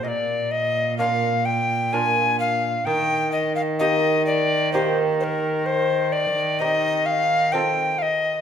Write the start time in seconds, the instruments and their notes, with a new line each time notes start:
0.03 cello A#2, lute A#2, recorder D#5
0.08 recorder D5
0.51 recorder D#5
0.98 lute A#3 D4 F4, recorder F5
1.45 recorder G5
1.93 lute A#3 D4 F4, recorder G#5
2.40 recorder F5
2.85 cello D#3, lute D#3, recorder G5
3.32 recorder D#5
3.55 recorder F5
3.79 lute A#3 D#4 G4, recorder D#5
4.26 recorder D5
4.73 lute A#3 D#4 G4, recorder C5
5.20 recorder A#4 C5
5.66 recorder C5
6.12 recorder D5
6.59 lute C4 D#4 G4, recorder D#5
7.06 recorder F5
7.52 lute C4 F4 A4, recorder G5
7.99 recorder D#5 F5